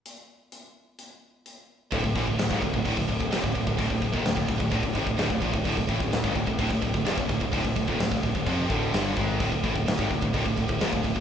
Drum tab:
CC |----------------|x-x-x-x-x-x-x-x-|x-x-x-x-x-x-x-x-|x-x-x-x-x-x-x-x-|
HH |x---x---x---x---|----------------|----------------|----------------|
SD |----------------|----o-------o---|----o-------o---|----o-------o---|
BD |----------------|oooo-ooooooo-ooo|oooo-ooooooo-ooo|oooo-ooooooo-ooo|

CC |x-x-x-x-x-x-x-x-|x-x-x-x-x-x-x-x-|
HH |----------------|----------------|
SD |----o-------o---|----o-------o---|
BD |oooo-oooo-o---o-|oooo-ooooooo-ooo|